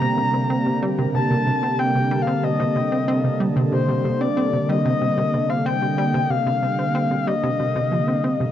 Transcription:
Already playing: analog synth pad C3 D3 G3 A#3, soft synth lead A#5
0.01 analog synth bass C3
0.18 analog synth bass C3
0.34 analog synth bass C4
0.50 analog synth bass C4
0.66 analog synth bass C3
0.82 analog synth bass G3
0.98 analog synth bass C3
1.14 analog synth bass C3, soft synth lead A5
1.31 analog synth bass C3
1.47 analog synth bass C3
1.63 analog synth bass C4
1.79 analog synth bass C4, soft synth lead G5
1.95 analog synth bass C3
2.11 analog synth bass G3
2.22 soft synth lead F5
2.27 analog synth bass C3
2.43 analog synth bass C3, soft synth lead D#5
2.60 analog synth bass C3
2.76 analog synth bass C3
2.92 analog synth bass C4
3.08 analog synth bass C4
3.24 analog synth bass C3
3.40 analog synth bass G3
3.56 analog synth bass C3
3.72 analog synth bass C3, soft synth lead C5
3.88 analog synth bass C3
4.05 analog synth bass C3
4.21 analog synth bass C4, soft synth lead D5
4.37 analog synth bass C4
4.53 analog synth bass C3
4.69 analog synth bass G3, soft synth lead D#5
4.85 analog synth bass C3
5.01 analog synth bass C3
5.17 analog synth bass C3
5.33 analog synth bass C3
5.50 analog synth bass C4, soft synth lead F5
5.66 analog synth bass C4, soft synth lead G5
5.82 analog synth bass C3
5.98 analog synth bass G3
6.14 analog synth bass C3
6.30 analog synth bass C3, soft synth lead F5
6.46 analog synth bass C3
6.63 analog synth bass C3
6.79 analog synth bass C4
6.95 analog synth bass C4
7.11 analog synth bass C3
7.27 analog synth bass G3, soft synth lead D#5
7.43 analog synth bass C3
7.59 analog synth bass C3
7.75 analog synth bass C3
7.92 analog synth bass F3
8.08 analog synth bass C4
8.24 analog synth bass C4
8.40 analog synth bass C3

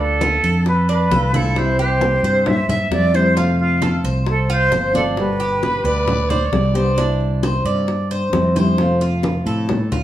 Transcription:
Already playing: fretless electric bass D2, nylon-string guitar D3 A3 D4 F4, cuban tres D4
0.00 flute A4
0.21 cuban tres F4, high bongo, high conga
0.43 fretless electric bass F2, cuban tres A4, high conga
0.66 flute B4, muted nylon-string guitar stroke, high bongo, high conga
0.89 cuban tres D4, flute B4, high conga
1.10 fretless electric bass C2, nylon-string guitar D3 A3 D4 F4, cuban tres A4, high bongo, low bongo, high conga
1.33 nylon-string guitar A3 D4 F4, cuban tres E4, flute A4, high conga
1.55 nylon-string guitar C3 E3 G3 C4 E4, flute C5, high bongo, high conga
1.79 cuban tres G4, flute C5, high bongo, high conga
2.01 high bongo, high conga
2.23 fretless electric bass G2, cuban tres C5, high bongo, high conga
2.46 flute E5, muted nylon-string guitar stroke, high bongo, high conga, low conga
2.68 fretless electric bass G2, flute E5, cuban tres E5, high conga, low conga
2.91 fretless electric bass F2, nylon-string guitar E3 G3 C4 E4, flute D5, high bongo, low bongo, high conga
3.14 nylon-string guitar E3 G3 C4 E4, cuban tres C5, flute C5, high bongo
3.36 nylon-string guitar C3 F3 A3 C4 F4, cuban tres F4, flute F4, high bongo, high conga
3.60 flute F4, high conga
3.82 cuban tres A4, high bongo, high conga
4.04 fretless electric bass C2, cuban tres C5, high conga
4.26 flute A4, muted nylon-string guitar stroke, high bongo, high conga
4.50 cuban tres F4, flute C5, high conga
4.71 nylon-string guitar F3 A3 C4 F4, cuban tres C5, high bongo, low bongo, high conga
4.93 nylon-string guitar F3 A3 C4 F4, cuban tres D4, flute A4, high conga
5.16 nylon-string guitar B2 D3 G3 B3 G4, flute B4, high bongo
5.40 cuban tres G4, high bongo, high conga
5.62 trumpet B4, high bongo, high conga
5.84 fretless electric bass D2, cuban tres B4, trumpet D5, high bongo, high conga
6.07 muted nylon-string guitar stroke, high bongo, high conga, low conga
6.30 trumpet C5, cuban tres D5, high conga, low conga
6.46 trumpet C#5
6.52 fretless electric bass C2, nylon-string guitar D3 G3 B3 G4, trumpet D5, high bongo, low bongo, high conga
6.74 nylon-string guitar D3 G3 B3 G4, cuban tres C5, high bongo
6.96 nylon-string guitar C3 E3 G3 D4 E4, cuban tres D4, high bongo, high conga
7.21 high conga
7.43 cuban tres C5, high bongo, high conga
7.65 fretless electric bass G2, cuban tres D5, high conga
7.87 muted nylon-string guitar stroke, high bongo, high conga
8.11 cuban tres C5, high conga
8.32 fretless electric bass F2, nylon-string guitar E3 G3 D4 E4, high bongo, low bongo, high conga
8.55 nylon-string guitar E3 G3 D4 E4, cuban tres C5, high conga
8.78 nylon-string guitar C3 F3 A3 C4 F4, high bongo
9.01 cuban tres F4, high bongo, high conga
9.23 high bongo, high conga
9.46 fretless electric bass A2, cuban tres A4, high bongo, high conga
9.69 muted nylon-string guitar stroke, high bongo, high conga, low conga
9.91 fretless electric bass D2, cuban tres F4, high conga, low conga

